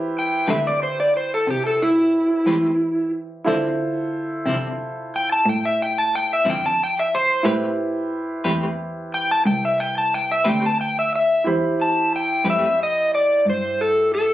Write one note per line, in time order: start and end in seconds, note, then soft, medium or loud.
0.00 0.44 E3 medium
0.00 3.42 E4 medium
0.00 3.42 G4 medium
0.00 3.43 B4 medium
0.00 3.43 C5 medium
0.19 0.49 G5 medium
0.47 1.44 D3 medium
0.47 0.68 A3 soft
0.47 0.67 C4 medium
0.47 0.67 G4 medium
0.47 0.67 B4 medium
0.47 0.65 E5 medium
0.67 0.82 D5 medium
0.83 0.98 C5 medium
1.00 1.15 D5 medium
1.17 1.31 C5 medium
1.34 1.48 A4 medium
1.47 2.44 C3 medium
1.47 1.65 G4 medium
1.66 1.81 A4 medium
1.82 3.10 E4 medium
2.46 3.43 E3 medium
2.46 2.67 A3 medium
2.46 2.67 C4 medium
2.46 2.67 G4 medium
2.46 2.67 B4 medium
3.44 3.66 D3 medium
3.44 4.43 D3 medium
3.44 3.67 F3 medium
3.44 3.67 C4 medium
3.44 7.41 E4 medium
3.44 3.67 E4 medium
3.44 7.41 F4 medium
3.44 7.42 A4 medium
3.44 7.42 C5 medium
4.46 5.43 C3 medium
4.46 4.67 D3 soft
4.46 4.67 F3 medium
4.46 4.66 C4 medium
4.46 4.66 E4 medium
5.16 5.30 G5 medium
5.32 5.47 A5 medium
5.46 6.43 A2 medium
5.46 5.64 G5 medium
5.65 5.80 E5 medium
5.82 5.97 G5 medium
5.98 6.13 A5 medium
6.15 6.30 G5 medium
6.33 6.47 E5 medium
6.44 7.42 F2 medium
6.44 6.66 D3 medium
6.44 6.66 F3 medium
6.44 6.65 C4 medium
6.44 6.65 E4 medium
6.50 6.64 G5 medium
6.66 6.80 A5 medium
6.83 6.97 G5 medium
6.99 7.14 E5 medium
7.15 7.46 C5 medium
7.43 8.42 A2 medium
7.43 7.65 A3 medium
7.43 7.65 C4 medium
7.43 11.40 E4 medium
7.43 11.40 G4 soft
7.43 7.65 G4 medium
7.43 11.41 B4 soft
7.43 7.65 B4 medium
7.43 11.41 C5 medium
8.44 9.42 E2 medium
8.44 8.66 A3 medium
8.44 8.65 C4 medium
8.44 8.65 G4 medium
8.44 8.65 B4 medium
9.14 9.29 G5 medium
9.31 9.46 A5 medium
9.45 10.42 C2 medium
9.45 9.62 G5 medium
9.65 9.80 E5 medium
9.80 9.96 G5 medium
9.98 10.13 A5 medium
10.14 10.29 G5 medium
10.32 10.46 E5 medium
10.44 11.42 D2 medium
10.44 10.65 A3 medium
10.44 10.65 C4 medium
10.44 10.65 G4 medium
10.44 10.65 B4 medium
10.49 10.63 G5 medium
10.66 10.80 A5 medium
10.81 10.96 G5 medium
10.99 11.13 E5 medium
11.15 11.46 E5 medium
11.44 12.43 E2 medium
11.44 14.34 E4 soft
11.44 14.34 G4 soft
11.44 14.34 C5 medium
11.44 14.34 B5 soft
11.81 12.12 A5 medium
12.16 12.46 G5 medium
12.45 13.42 F2 medium
12.45 12.66 A3 soft
12.45 12.66 C4 medium
12.45 12.65 G4 medium
12.45 12.65 B4 medium
12.50 12.80 E5 medium
12.83 13.13 D#5 medium
13.15 13.46 D5 medium
13.45 14.34 G2 medium
13.49 13.80 C5 medium
13.81 14.12 A4 medium
14.15 14.34 A4 medium